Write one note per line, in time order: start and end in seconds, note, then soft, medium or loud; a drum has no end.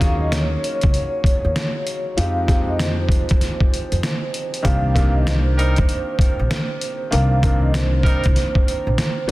0.00 0.54 D#2 loud
0.00 2.19 F#3 medium
0.00 2.19 A#3 medium
0.00 2.19 C#4 medium
0.00 2.19 D#4 medium
0.00 2.19 F4 loud
0.00 0.84 G#4 medium
0.00 0.18 F5 medium
0.00 kick medium
0.00 snare soft
0.00 closed hi-hat medium
0.20 0.31 D#5 medium
0.32 0.60 C#5 medium
0.32 snare loud
0.32 closed hi-hat medium
0.64 2.14 C#5 medium
0.64 closed hi-hat medium
0.81 0.92 C#2 medium
0.81 kick medium
0.81 closed hi-hat medium
0.94 closed hi-hat medium
1.24 kick medium
1.24 closed hi-hat medium
1.45 1.54 D#2 medium
1.56 snare loud
1.56 closed hi-hat medium
1.87 closed hi-hat medium
2.17 3.26 F2 loud
2.17 2.40 F3 medium
2.17 2.40 G#3 medium
2.17 2.41 C4 medium
2.17 2.41 D#4 medium
2.17 2.41 G4 medium
2.17 2.64 F5 medium
2.17 closed hi-hat loud
2.47 3.31 F3 medium
2.47 3.31 G#3 medium
2.47 3.32 C4 medium
2.47 3.32 D#4 medium
2.47 3.32 G4 medium
2.47 kick medium
2.47 snare soft
2.47 closed hi-hat medium
2.69 2.79 D#5 medium
2.79 3.07 C5 medium
2.79 snare loud
2.79 closed hi-hat medium
3.09 kick medium
3.09 closed hi-hat medium
3.29 3.40 F2 medium
3.29 kick medium
3.29 closed hi-hat medium
3.41 snare soft
3.41 closed hi-hat medium
3.60 kick loud
3.74 closed hi-hat medium
3.92 4.01 F2 medium
3.92 closed hi-hat soft
4.03 snare loud
4.03 closed hi-hat medium
4.34 closed hi-hat medium
4.54 closed hi-hat medium
4.62 5.73 C2 loud
4.62 4.86 D#3 medium
4.62 4.87 A#3 medium
4.62 4.87 C4 medium
4.62 4.87 D4 medium
4.62 4.88 G4 medium
4.62 5.12 F5 loud
4.62 kick loud
4.62 closed hi-hat loud
4.94 5.78 D#3 medium
4.94 5.79 A#3 medium
4.94 5.79 C4 medium
4.94 5.79 D4 medium
4.94 5.79 G4 medium
4.94 kick medium
4.94 snare soft
4.94 closed hi-hat medium
5.15 5.26 D#5 medium
5.26 5.54 C5 medium
5.26 snare loud
5.26 closed hi-hat medium
5.58 5.77 G3 loud
5.58 5.77 D#4 loud
5.58 5.77 A#4 loud
5.58 7.08 C5 medium
5.58 closed hi-hat medium
5.76 5.87 D#2 medium
5.76 kick medium
5.76 closed hi-hat medium
5.89 closed hi-hat medium
6.19 kick loud
6.19 closed hi-hat medium
6.39 6.48 A#1 medium
6.51 snare loud
6.51 closed hi-hat medium
6.81 closed hi-hat medium
7.11 8.21 C2 loud
7.11 7.34 D#3 medium
7.11 7.35 A#3 medium
7.11 7.35 C4 medium
7.11 7.35 D4 medium
7.11 7.36 A#4 medium
7.11 7.59 F5 medium
7.11 closed hi-hat loud
7.43 8.26 D#3 medium
7.43 8.26 A#3 medium
7.43 8.27 C4 medium
7.43 8.27 D4 medium
7.43 8.27 A#4 medium
7.43 kick medium
7.43 closed hi-hat medium
7.62 7.73 D#5 medium
7.74 8.02 C5 medium
7.74 snare loud
7.74 closed hi-hat loud
8.03 8.24 G3 loud
8.03 8.24 D#4 loud
8.03 8.24 A#4 loud
8.03 9.31 C5 medium
8.03 kick medium
8.03 closed hi-hat medium
8.24 8.35 C2 loud
8.24 kick loud
8.24 closed hi-hat soft
8.36 snare soft
8.36 closed hi-hat medium
8.55 kick loud
8.68 closed hi-hat medium
8.87 8.96 A#1 medium
8.98 snare loud
8.98 closed hi-hat medium
9.27 9.31 F#3 loud